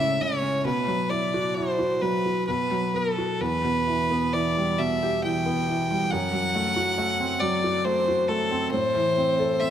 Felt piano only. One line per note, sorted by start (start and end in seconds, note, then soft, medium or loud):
0.00 0.59 C#2 soft
0.00 0.66 A2 soft
0.00 0.20 C#3 soft
0.00 0.60 A3 soft
0.00 0.66 E4 soft
0.00 0.61 A4 soft
0.20 0.63 C#3 soft
0.42 0.64 C#4 soft
0.65 2.44 B2 soft
0.88 2.01 F#3 soft
1.10 1.56 E4 soft
1.34 1.78 F#4 soft
1.57 2.46 E4 soft
1.79 2.25 F#4 soft
2.02 2.47 F#3 soft
2.26 2.48 F#4 soft
2.48 3.38 B2 soft
2.71 3.39 F#3 soft
2.94 3.39 B3 soft
3.18 3.40 F#4 soft
3.41 6.07 E2 soft
3.64 4.78 B2 soft
3.88 4.33 E3 soft
4.11 5.44 B3 soft
4.34 5.23 E3 soft
4.57 5.89 G3 soft
4.80 6.07 B2 soft
5.03 6.08 G4 soft
5.24 5.67 E3 soft
5.46 6.09 B3 soft
5.68 6.10 E3 soft
5.91 6.11 G3 soft
6.12 8.69 F#2 soft
6.33 7.40 F#3 soft
6.55 6.97 A3 soft
6.76 7.62 F#4 soft
6.98 7.84 A3 soft
7.20 8.50 C4 soft
7.42 8.69 F#3 soft
7.64 8.06 F#4 soft
7.86 8.28 A3 soft
8.08 8.71 F#4 soft
8.29 8.71 A3 soft
8.51 8.72 C4 soft
8.73 9.70 A2 soft
8.95 9.70 E3 soft
9.18 9.61 C4 soft
9.39 9.70 A4 soft
9.62 9.70 C4 soft